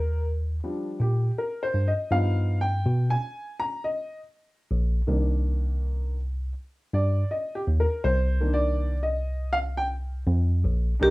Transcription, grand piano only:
0.00 0.24 A#4 medium
0.64 0.97 F3 soft
0.64 0.97 G3 soft
0.64 0.97 D4 medium
1.01 1.35 G4 medium
1.38 1.63 A#4 medium
1.63 1.88 C5 medium
1.88 2.10 D#5 medium
2.11 2.63 F3 medium
2.11 2.63 B3 soft
2.11 2.63 D#4 medium
2.11 2.58 F5 medium
2.61 3.12 G5 medium
3.10 3.61 G#5 loud
3.60 3.85 A#5 loud
3.84 4.19 D#5 medium
5.07 6.15 D#3 medium
5.07 6.15 A#3 soft
5.07 6.15 D4 medium
6.94 7.32 D5 medium
7.31 7.54 D#5 medium
7.55 7.61 G4 medium
7.80 8.05 A#4 medium
8.04 8.55 C5 medium
8.40 8.93 D#3 medium
8.40 8.93 A#3 soft
8.40 8.93 D4 medium
8.53 8.99 D5 medium
9.03 9.49 D#5 medium
9.53 9.58 F5 loud
9.77 9.86 G5 loud
11.00 11.10 D4 medium
11.00 11.10 D#4 medium
11.00 11.10 G4 medium
11.00 11.10 A#4 medium

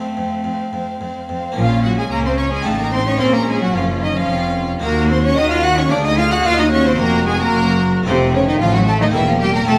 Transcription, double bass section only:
1.57 2.08 A#1 medium
2.11 2.65 C#2 medium
2.67 3.20 A1 medium
3.21 3.74 A#1 medium
3.75 4.28 F#1 medium
4.29 4.82 F1 medium
4.82 5.36 D#2 medium
5.37 5.90 D#2 medium
5.92 6.45 D2 medium
6.46 6.99 D#2 medium
7.00 7.53 F1 loud
7.54 8.06 F#1 medium
8.07 8.60 F1 medium
8.61 9.14 A1 medium
9.14 9.67 E1 medium
9.68 9.79 F1 medium

